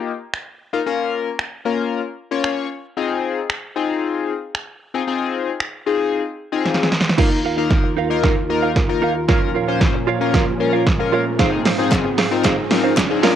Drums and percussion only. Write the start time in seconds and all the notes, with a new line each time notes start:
0.34 finger snap
1.39 finger snap
2.44 finger snap
3.50 finger snap
4.55 finger snap
5.60 finger snap
6.65 snare
6.74 snare
6.83 snare
6.92 snare
7.01 snare
7.09 snare
7.18 kick, snare, crash
7.70 kick, snare
8.23 kick, snare
8.76 kick, snare
9.29 kick, snare
9.81 kick, snare
10.34 kick, snare
10.87 kick, snare
11.39 kick, snare, closed hi-hat
11.65 snare, open hi-hat
11.92 kick, snare, clap, closed hi-hat
12.18 snare, open hi-hat
12.44 kick, snare, clap, closed hi-hat
12.71 snare, open hi-hat
12.97 kick, snare, clap, closed hi-hat
13.23 snare, open hi-hat